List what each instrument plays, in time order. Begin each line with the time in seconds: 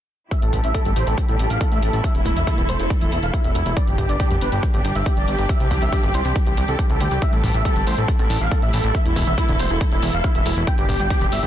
0.31 string section C3 G3 A3 E4 G4, supersaw synth E5, kick, closed hi-hat
0.42 analog synth bass A1, supersaw synth A4, closed hi-hat
0.53 analog synth bass A1, supersaw synth A4, kick, closed hi-hat
0.64 analog synth bass A1, supersaw synth E5, closed hi-hat
0.74 supersaw synth A4, kick, closed hi-hat
0.85 analog synth bass G1, supersaw synth A4, closed hi-hat
0.96 analog synth bass A1, supersaw synth C5, closed hi-hat
1.07 analog synth bass A1, supersaw synth A4, closed hi-hat
1.18 kick, closed hi-hat
1.28 analog synth bass A1, supersaw synth A4, closed hi-hat
1.39 analog synth bass A1, supersaw synth A4, closed hi-hat
1.50 analog synth bass A1, supersaw synth F5, closed hi-hat
1.61 supersaw synth A4, kick, closed hi-hat
1.72 analog synth bass A1, supersaw synth E5, closed hi-hat
1.82 analog synth bass A1, supersaw synth A4, closed hi-hat
1.93 analog synth bass A1, supersaw synth A4, closed hi-hat
2.04 string section B2 E3 A4, supersaw synth E5, kick, closed hi-hat
2.15 analog synth bass E1, supersaw synth E4, closed hi-hat
2.25 analog synth bass E1, supersaw synth E4, kick, closed hi-hat
2.36 analog synth bass E1, supersaw synth E5, closed hi-hat
2.47 supersaw synth E4, kick, closed hi-hat
2.58 analog synth bass D1, supersaw synth E4, closed hi-hat
2.69 analog synth bass E1, supersaw synth C5, closed hi-hat
2.80 analog synth bass E1, supersaw synth E4, closed hi-hat
2.90 kick, closed hi-hat
3.01 analog synth bass E1, supersaw synth E4, closed hi-hat
3.12 analog synth bass E1, supersaw synth E4, closed hi-hat
3.23 analog synth bass E1, supersaw synth F5, closed hi-hat
3.33 supersaw synth E4, kick, closed hi-hat
3.44 analog synth bass E1, supersaw synth E5, closed hi-hat
3.55 analog synth bass E1, supersaw synth E4, closed hi-hat
3.66 analog synth bass E1, supersaw synth E4, closed hi-hat
3.77 string section B2 D3 G3 D4 G4, supersaw synth D5, kick, closed hi-hat
3.87 analog synth bass G1, supersaw synth G4, closed hi-hat
3.98 analog synth bass G1, supersaw synth G4, kick, closed hi-hat
4.09 analog synth bass G1, supersaw synth D5, closed hi-hat
4.20 supersaw synth G4, kick, closed hi-hat
4.31 analog synth bass F1, supersaw synth G4, closed hi-hat
4.41 analog synth bass G1, supersaw synth B4, closed hi-hat
4.52 analog synth bass G1, supersaw synth G4, closed hi-hat
4.63 kick, closed hi-hat
4.74 analog synth bass G1, supersaw synth G4, closed hi-hat
4.84 analog synth bass G1, supersaw synth G4, closed hi-hat
4.95 analog synth bass G1, supersaw synth E5, closed hi-hat
5.06 supersaw synth G4, kick, closed hi-hat
5.17 analog synth bass G1, supersaw synth D5, closed hi-hat
5.28 analog synth bass G1, supersaw synth G4, closed hi-hat
5.39 analog synth bass G1, supersaw synth G4, closed hi-hat
5.49 string section C3 E3, supersaw synth E5, kick, closed hi-hat
5.60 analog synth bass C2, supersaw synth G4, closed hi-hat
5.71 analog synth bass C2, supersaw synth G4, kick, closed hi-hat
5.82 analog synth bass C2, supersaw synth E5, closed hi-hat
5.92 supersaw synth G4, kick, closed hi-hat
6.03 analog synth bass G1, supersaw synth G4, closed hi-hat
6.14 analog synth bass C2, supersaw synth C5, closed hi-hat
6.25 analog synth bass C2, supersaw synth G4, closed hi-hat
6.36 kick, closed hi-hat
6.47 analog synth bass C2, supersaw synth G4, closed hi-hat
6.57 analog synth bass C2, supersaw synth G4, closed hi-hat
6.68 analog synth bass C2, supersaw synth A4, closed hi-hat
6.79 supersaw synth G4, kick, closed hi-hat
6.90 analog synth bass C2, supersaw synth A4, closed hi-hat
7.00 analog synth bass D2, supersaw synth G4, closed hi-hat
7.11 analog synth bass C2, supersaw synth G4, closed hi-hat
7.22 string section A3 E4, supersaw synth E5, kick, closed hi-hat
7.33 analog synth bass A1, supersaw synth A4, closed hi-hat
7.44 analog synth bass A1, supersaw synth A4, kick, open hi-hat
7.54 analog synth bass A1, supersaw synth E5, closed hi-hat
7.65 supersaw synth A4, kick, closed hi-hat
7.76 analog synth bass G1, supersaw synth A4, closed hi-hat
7.87 analog synth bass A1, supersaw synth C5, open hi-hat
7.98 analog synth bass A1, supersaw synth A4, closed hi-hat
8.08 kick, closed hi-hat
8.19 analog synth bass A1, supersaw synth A4, closed hi-hat
8.30 analog synth bass A1, supersaw synth A4, open hi-hat
8.41 analog synth bass A1, supersaw synth F5, closed hi-hat
8.52 supersaw synth A4, kick, closed hi-hat
8.62 analog synth bass A1, supersaw synth E5, closed hi-hat
8.73 analog synth bass A1, supersaw synth A4, open hi-hat
8.84 analog synth bass A1, supersaw synth A4, closed hi-hat
8.95 string section B2 E3 A4, supersaw synth E5, kick, closed hi-hat
9.05 analog synth bass E1, supersaw synth E4, closed hi-hat
9.16 analog synth bass E1, supersaw synth E4, kick, open hi-hat
9.27 analog synth bass E1, supersaw synth E5, closed hi-hat
9.38 supersaw synth E4, kick, closed hi-hat
9.48 analog synth bass D1, supersaw synth E4, closed hi-hat
9.59 analog synth bass E1, supersaw synth C5, open hi-hat
9.70 analog synth bass E1, supersaw synth E4, closed hi-hat
9.81 kick, closed hi-hat
9.92 analog synth bass E1, supersaw synth E4, closed hi-hat
10.03 analog synth bass E1, supersaw synth E4, open hi-hat
10.13 analog synth bass E1, supersaw synth F5, closed hi-hat
10.24 supersaw synth E4, kick, closed hi-hat
10.35 analog synth bass E1, supersaw synth E5, closed hi-hat
10.46 analog synth bass E1, supersaw synth E4, open hi-hat
10.56 analog synth bass E1, supersaw synth E4, closed hi-hat
10.67 string section D3 G3 D4 G4, supersaw synth G5, kick, closed hi-hat
10.78 analog synth bass G1, supersaw synth G4, closed hi-hat
10.89 analog synth bass G1, supersaw synth G4, kick, open hi-hat
11.00 analog synth bass G1, supersaw synth G5, closed hi-hat
11.10 supersaw synth G4, kick, closed hi-hat
11.21 analog synth bass F1, supersaw synth G4, closed hi-hat
11.32 analog synth bass G1, supersaw synth E5, open hi-hat
11.43 analog synth bass G1, supersaw synth G4, closed hi-hat